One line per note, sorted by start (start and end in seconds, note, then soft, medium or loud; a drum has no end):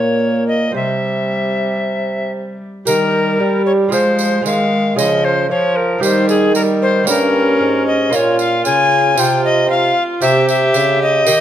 0.00 0.71 A#2 soft
0.00 0.76 A#2 medium
0.00 0.69 A#3 soft
0.00 0.75 A#3 medium
0.00 0.70 C#4 soft
0.00 0.71 F4 soft
0.00 0.46 C#5 medium
0.48 0.74 D#5 medium
0.72 2.57 C3 soft
0.72 2.61 C3 medium
0.72 2.64 G3 medium
0.72 2.82 C4 soft
0.72 2.82 C5 soft
0.76 2.32 E5 medium
2.85 3.37 D#3 medium
2.85 3.36 D#3 medium
2.85 3.93 G3 medium
2.85 3.89 G4 medium
2.85 3.62 A#4 loud
2.85 3.89 A#4 medium
2.85 tambourine medium
3.40 3.88 G3 medium
3.40 3.94 G3 medium
3.66 3.72 C#5 medium
3.89 4.41 F3 medium
3.89 4.45 F3 medium
3.89 4.40 G#3 medium
3.89 4.43 G#3 medium
3.89 4.41 F4 medium
3.89 4.43 G#4 medium
3.89 4.44 C5 medium
3.89 tambourine soft
4.19 tambourine soft
4.41 4.94 D#3 medium
4.41 4.95 G#3 medium
4.41 4.96 G#3 medium
4.41 4.93 F4 medium
4.41 4.95 G#4 medium
4.45 4.97 D#3 medium
4.45 4.97 F5 medium
4.45 tambourine medium
4.94 5.46 C#3 medium
4.94 5.52 C#3 medium
4.94 5.50 F3 medium
4.94 5.98 F4 medium
4.94 5.99 G#4 medium
4.94 5.26 D#5 medium
4.99 tambourine medium
5.24 5.50 C5 medium
5.50 6.04 F3 medium
5.50 6.01 F3 medium
5.50 5.99 F3 medium
5.50 5.78 C#5 medium
5.76 6.03 A#4 medium
5.98 7.03 D#3 medium
5.98 6.54 G3 medium
5.98 7.02 A#3 medium
5.98 7.03 D#4 medium
5.98 7.04 G4 medium
6.03 7.10 D#3 medium
6.03 6.28 C5 medium
6.03 tambourine medium
6.29 6.55 G#4 medium
6.29 tambourine soft
6.55 7.09 G3 medium
6.55 6.61 A#4 medium
6.55 tambourine medium
6.82 7.08 C5 loud
7.04 8.07 A#3 medium
7.04 8.08 C#4 medium
7.04 8.13 C#4 medium
7.04 8.09 G4 medium
7.04 tambourine medium
7.08 7.56 G2 medium
7.08 7.60 G2 medium
7.08 7.85 A#4 loud
7.60 8.12 G#2 medium
7.60 8.09 G#2 medium
7.87 8.17 D#5 medium
8.10 8.64 A#2 medium
8.10 9.13 A#3 medium
8.10 9.14 C#4 medium
8.10 9.16 F4 medium
8.10 9.14 F4 medium
8.10 tambourine medium
8.14 8.62 A#2 medium
8.14 8.39 C#5 medium
8.39 8.65 F5 loud
8.39 tambourine soft
8.65 9.19 C#3 medium
8.65 9.14 C#3 medium
8.65 9.21 G#5 loud
8.65 tambourine medium
9.15 9.94 C3 medium
9.15 9.90 C3 medium
9.15 9.66 C4 medium
9.15 9.68 F4 medium
9.15 9.67 F4 medium
9.15 tambourine medium
9.19 9.44 G5 loud
9.45 9.70 D#5 loud
9.67 10.19 C4 medium
9.67 10.20 F4 medium
9.67 10.24 F4 medium
9.67 10.03 F5 medium
10.21 10.77 C3 medium
10.21 10.71 C3 medium
10.21 11.23 C4 medium
10.21 11.23 G4 medium
10.21 11.26 G4 medium
10.21 10.46 E5 loud
10.21 tambourine medium
10.48 11.00 E5 loud
10.48 tambourine soft
10.74 11.23 C#3 medium
10.74 11.29 C#3 medium
10.74 tambourine medium
11.02 11.40 D#5 loud
11.25 11.40 D#3 medium
11.25 11.40 A#3 medium
11.25 11.40 G4 medium
11.25 tambourine medium